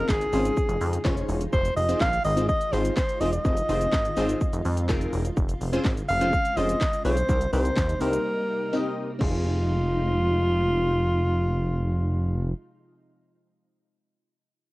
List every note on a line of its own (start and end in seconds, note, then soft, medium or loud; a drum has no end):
0.00 1.49 C#3 medium
0.00 5.33 G#3 medium
0.00 5.33 D#4 medium
0.00 1.49 F4 medium
0.00 0.11 A#4 loud
0.09 0.27 G#1 medium
0.09 1.05 G#4 medium
0.09 kick loud
0.09 snare medium
0.09 clap loud
0.09 shaker medium
0.21 closed hi-hat medium
0.21 shaker medium
0.33 0.51 G#1 loud
0.33 0.66 C4 medium
0.33 0.66 C#4 medium
0.33 0.66 F4 medium
0.33 0.66 G#4 medium
0.33 0.66 C5 loud
0.33 open hi-hat medium
0.33 shaker medium
0.45 closed hi-hat medium
0.45 shaker medium
0.57 kick loud
0.57 shaker medium
0.69 0.78 F1 loud
0.69 closed hi-hat medium
0.69 shaker medium
0.81 0.99 F2 loud
0.81 open hi-hat medium
0.81 shaker soft
0.93 closed hi-hat medium
0.93 shaker medium
1.05 1.23 F1 loud
1.05 1.43 C#4 loud
1.05 1.43 F4 medium
1.05 1.43 G#4 loud
1.05 1.43 C5 loud
1.05 1.43 C#5 loud
1.05 kick loud
1.05 snare medium
1.05 clap loud
1.05 shaker medium
1.17 closed hi-hat medium
1.17 shaker medium
1.29 1.47 E1 loud
1.29 open hi-hat medium
1.29 shaker medium
1.41 closed hi-hat medium
1.41 shaker medium
1.53 1.71 F1 loud
1.53 5.33 D#3 medium
1.53 7.25 F4 medium
1.53 1.75 C5 loud
1.53 kick loud
1.53 shaker medium
1.65 closed hi-hat medium
1.65 shaker medium
1.77 1.95 F1 loud
1.77 1.99 D#5 loud
1.77 open hi-hat medium
1.77 shaker medium
1.89 2.11 C4 medium
1.89 2.11 D#4 medium
1.89 2.11 F4 medium
1.89 2.11 G#4 medium
1.89 2.11 C5 loud
1.89 closed hi-hat medium
1.89 shaker medium
2.00 2.19 A#1 loud
2.00 2.23 F5 loud
2.00 kick loud
2.00 snare medium
2.00 clap loud
2.00 shaker medium
2.13 closed hi-hat medium
2.13 shaker medium
2.25 2.51 G#1 loud
2.25 2.47 D#5 loud
2.25 open hi-hat medium
2.25 shaker medium
2.37 2.53 C4 medium
2.37 2.53 D#4 medium
2.37 2.53 F4 medium
2.37 2.53 G#4 medium
2.37 2.53 C5 medium
2.37 closed hi-hat medium
2.37 shaker medium
2.49 2.74 D#5 loud
2.49 kick loud
2.49 shaker medium
2.61 closed hi-hat medium
2.61 shaker medium
2.73 2.91 G#1 loud
2.73 2.95 C4 medium
2.73 2.95 D#4 medium
2.73 2.95 F4 medium
2.73 2.95 G#4 medium
2.73 2.96 C5 medium
2.73 2.95 C5 medium
2.73 open hi-hat medium
2.73 shaker soft
2.85 closed hi-hat medium
2.85 shaker medium
2.97 3.22 C5 medium
2.97 kick loud
2.97 snare medium
2.97 clap loud
2.97 shaker medium
3.09 closed hi-hat medium
3.09 shaker medium
3.21 3.39 E1 medium
3.21 3.32 C4 medium
3.21 3.32 D#4 medium
3.21 3.32 F4 medium
3.21 3.32 G#4 medium
3.21 3.32 C5 medium
3.21 3.32 D#5 loud
3.21 open hi-hat medium
3.21 shaker medium
3.33 4.73 D#5 loud
3.33 closed hi-hat medium
3.33 shaker medium
3.45 3.63 F1 loud
3.45 3.56 C4 medium
3.45 3.56 D#4 medium
3.45 3.56 F4 medium
3.45 3.56 G#4 medium
3.45 3.56 C5 medium
3.45 kick loud
3.45 shaker medium
3.57 closed hi-hat medium
3.57 shaker medium
3.69 3.87 F1 loud
3.69 3.91 C4 medium
3.69 3.91 D#4 medium
3.69 3.91 F4 medium
3.69 3.91 G#4 medium
3.69 3.91 C5 medium
3.69 open hi-hat medium
3.69 shaker medium
3.81 closed hi-hat medium
3.81 shaker medium
3.92 4.11 G#1 medium
3.92 kick loud
3.92 snare medium
3.92 clap loud
3.92 shaker medium
4.05 closed hi-hat medium
4.05 shaker medium
4.17 4.35 G#1 medium
4.17 4.50 C4 loud
4.17 4.50 D#4 loud
4.17 4.50 F4 loud
4.17 4.50 G#4 loud
4.17 4.50 C5 loud
4.17 open hi-hat medium
4.17 shaker medium
4.29 closed hi-hat medium
4.29 shaker medium
4.41 kick loud
4.41 shaker medium
4.53 4.62 F1 loud
4.53 closed hi-hat medium
4.53 shaker medium
4.65 4.91 F2 loud
4.65 open hi-hat medium
4.65 shaker soft
4.77 closed hi-hat medium
4.77 shaker medium
4.89 5.07 F1 loud
4.89 5.27 C4 loud
4.89 5.27 D#4 medium
4.89 5.27 F4 medium
4.89 5.27 G#4 loud
4.89 5.27 A#4 loud
4.89 kick loud
4.89 snare medium
4.89 clap loud
4.89 shaker medium
5.01 closed hi-hat medium
5.01 shaker medium
5.13 5.31 E1 loud
5.13 open hi-hat medium
5.13 shaker medium
5.25 closed hi-hat medium
5.25 shaker medium
5.37 5.55 F1 loud
5.37 7.27 C#3 medium
5.37 7.27 G#3 medium
5.37 7.27 C4 medium
5.37 kick loud
5.37 shaker medium
5.49 closed hi-hat medium
5.49 shaker medium
5.61 5.79 F1 loud
5.61 open hi-hat medium
5.61 shaker medium
5.73 5.95 C4 loud
5.73 5.95 C#4 loud
5.73 5.95 F4 loud
5.73 5.95 G#4 loud
5.73 5.95 C5 loud
5.73 closed hi-hat medium
5.73 shaker medium
5.84 6.03 G#1 medium
5.84 kick loud
5.84 snare medium
5.84 clap loud
5.84 shaker medium
5.97 closed hi-hat medium
5.97 shaker medium
6.09 6.35 F1 medium
6.09 6.58 F5 loud
6.09 open hi-hat medium
6.09 shaker medium
6.21 6.37 C4 medium
6.21 6.37 C#4 medium
6.21 6.37 F4 medium
6.21 6.37 G#4 medium
6.21 6.37 C5 medium
6.21 closed hi-hat medium
6.21 shaker medium
6.33 kick loud
6.33 shaker medium
6.45 closed hi-hat medium
6.45 shaker medium
6.57 6.75 F1 medium
6.57 6.79 C4 medium
6.57 6.79 C#4 medium
6.57 6.79 F4 medium
6.57 6.79 G#4 medium
6.57 6.79 C5 medium
6.57 7.04 D#5 loud
6.57 open hi-hat medium
6.57 shaker medium
6.69 closed hi-hat medium
6.69 shaker medium
6.81 kick loud
6.81 snare medium
6.81 clap loud
6.81 shaker medium
6.93 closed hi-hat medium
6.93 shaker medium
7.05 7.23 B1 medium
7.05 7.16 C4 medium
7.05 7.16 C#4 medium
7.05 7.16 F4 medium
7.05 7.16 G#4 medium
7.05 7.50 C5 loud
7.05 7.16 C#5 loud
7.05 open hi-hat medium
7.05 shaker medium
7.17 closed hi-hat medium
7.17 shaker medium
7.29 7.47 C2 loud
7.29 9.19 C3 medium
7.29 9.19 G3 medium
7.29 9.19 A#3 medium
7.29 7.40 C4 medium
7.29 9.19 D#4 medium
7.29 7.40 D#4 medium
7.29 7.40 G4 medium
7.29 7.40 A#4 medium
7.29 7.40 C5 medium
7.29 kick loud
7.29 shaker medium
7.41 closed hi-hat medium
7.41 shaker medium
7.53 7.71 C2 loud
7.53 7.75 C4 medium
7.53 7.75 D#4 medium
7.53 7.75 G4 medium
7.53 7.75 A#4 medium
7.53 8.02 C5 loud
7.53 7.75 C5 medium
7.53 open hi-hat medium
7.53 shaker medium
7.65 closed hi-hat medium
7.65 shaker medium
7.76 7.95 D#2 loud
7.76 kick loud
7.76 snare medium
7.76 clap loud
7.76 shaker medium
7.89 closed hi-hat medium
7.89 shaker medium
8.01 8.19 C2 loud
8.01 8.34 C4 medium
8.01 8.34 D#4 medium
8.01 8.34 G4 medium
8.01 8.97 A#4 medium
8.01 8.34 A#4 medium
8.01 8.34 C5 loud
8.01 open hi-hat medium
8.01 shaker medium
8.13 closed hi-hat medium
8.13 shaker medium
8.73 9.11 C4 loud
8.73 9.11 D#4 loud
8.73 9.11 G4 medium
8.73 9.11 A#4 loud
8.73 9.11 D#5 loud
9.19 12.53 F1 loud
9.19 12.53 C3 medium
9.19 12.53 F3 medium
9.19 12.53 G#3 medium
9.19 12.51 C4 medium
9.19 12.53 D#4 medium
9.19 12.53 F4 loud
9.19 12.54 F4 medium
9.19 12.55 G#4 loud
9.19 kick loud
9.19 crash medium